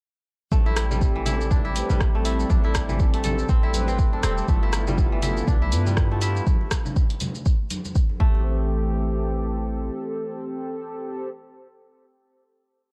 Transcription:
0.51 808-style bass A1, analog synth pad G3 A3 C4 G4, kora A3, analog polysynth C4 G4 A4, kick, high conga, shaker
0.66 kora E4, muted conga
0.77 cross-stick, open hi-hat, shaker
0.91 kora G3, analog polysynth C4 G4 A4, high conga, low conga, shaker
1.01 kick, muted conga, shaker
1.16 kora E3
1.25 analog polysynth C4 G4 A4, kora E4, open hi-hat, muted conga, high conga, low conga, shaker
1.41 shaker
1.51 analog polysynth C4 G4 B4, kora D4, kick, muted conga, low conga, shaker
1.65 kora E4, high conga
1.76 analog polysynth C4 G4 B4, open hi-hat, shaker
1.90 808-style bass A1, kora G3, muted conga, high conga, low conga, shaker
2.00 kick, cross-stick, shaker
2.14 kora A3, analog polysynth C4 G4 A4, muted conga
2.25 kora E4, open hi-hat, shaker
2.39 muted conga, shaker
2.50 808-style bass A1, kora D4, analog polysynth G4 A4, analog synth pad A4, kick, high conga, shaker
2.64 kora E4, muted conga
2.75 kick, cross-stick, open hi-hat, shaker
2.89 kora E3, analog polysynth C4 G4 A4, high conga, low conga, shaker
2.99 kick, muted conga, shaker
3.14 kora A3, open hi-hat
3.24 analog polysynth C4 G4 A4, kora A4, open hi-hat, muted conga, high conga, low conga, shaker
3.39 shaker
3.49 808-style bass A1, kora C4, analog polysynth C4 G4 B4, kick, shaker
3.63 kora E4
3.74 analog polysynth C4 G4 B4, open hi-hat, high conga, shaker
3.88 kora C4, muted conga, high conga, shaker
3.99 kick, shaker
4.13 analog polysynth C4 G4 A4, kora D4, muted conga, high conga
4.23 808-style bass E1, kora C4, cross-stick, open hi-hat, shaker
4.38 muted conga, shaker
4.48 808-style bass G1, kora A3, analog synth pad A3 B3, analog polysynth B3 E4 F4 A4, kick, high conga, shaker
4.63 kora E4, muted conga
4.73 cross-stick, open hi-hat, shaker
4.87 kora G3, analog polysynth B3 E4 F4 A4, high conga, low conga, shaker
4.97 kick, muted conga, shaker
5.12 kora E3
5.22 analog polysynth B3 E4 F4 A4, kora E4, open hi-hat, muted conga, high conga, low conga, shaker
5.37 shaker
5.47 808-style bass B1, analog polysynth B3 E4 F4 B4, kora D4, kick, muted conga, low conga, shaker
5.62 kora E4, high conga
5.72 808-style bass G2, analog polysynth B3 E4 F4 B4, open hi-hat, shaker
5.87 kora G3, muted conga, high conga, low conga, shaker
5.97 kick, cross-stick, shaker
6.11 kora A3, analog polysynth B3 E4 F4 G4, muted conga
6.21 kora E4, open hi-hat, shaker
6.35 muted conga, shaker
6.47 kick, high conga, shaker
6.61 muted conga
6.71 kick, cross-stick, open hi-hat, shaker
6.85 high conga, low conga, shaker
6.96 kick, muted conga, shaker
7.10 open hi-hat
7.20 open hi-hat, muted conga, high conga, low conga, shaker
7.35 shaker
7.46 kick, muted conga, shaker
7.70 open hi-hat, high conga, shaker
7.85 muted conga, high conga, shaker
7.95 kick, shaker
8.09 muted conga, high conga
8.20 808-style bass A1, analog synth pad E3 A3 C4 G4, kora A3, analog polysynth C4 G4 A4, kick
8.35 muted conga

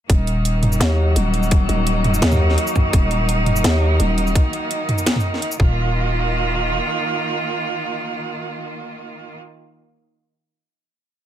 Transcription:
0.09 808-style bass D#1, cello section D#3 A#3 D#4, synth drone F#3 F#4, kick, closed hi-hat
0.27 closed hi-hat
0.45 closed hi-hat
0.63 closed hi-hat, mid tom
0.72 shaker
0.80 808-style bass D#2, snare, closed hi-hat
1.16 808-style bass D#1, closed hi-hat
1.34 closed hi-hat
1.43 shaker
1.51 kick, closed hi-hat
1.69 808-style bass D#1, closed hi-hat
1.87 closed hi-hat
2.04 closed hi-hat, mid tom
2.14 shaker
2.22 808-style bass D#2, snare, closed hi-hat
2.32 mid tom, shaker
2.50 snare
2.58 closed hi-hat
2.67 shaker
2.76 kick, closed hi-hat, mid tom
2.93 808-style bass D#1, kick, closed hi-hat
3.11 closed hi-hat
3.29 closed hi-hat
3.46 closed hi-hat, mid tom
3.56 shaker
3.64 808-style bass D#2, snare, closed hi-hat
4.00 808-style bass D#1, closed hi-hat
4.18 closed hi-hat
4.27 shaker
4.35 kick, closed hi-hat
4.53 closed hi-hat
4.71 closed hi-hat
4.89 closed hi-hat, mid tom
4.98 shaker
5.06 snare, closed hi-hat
5.16 mid tom
5.20 shaker
5.34 snare
5.42 closed hi-hat
5.52 shaker
5.60 808-style bass D#1, cello section D#3 A#3 F4, kick

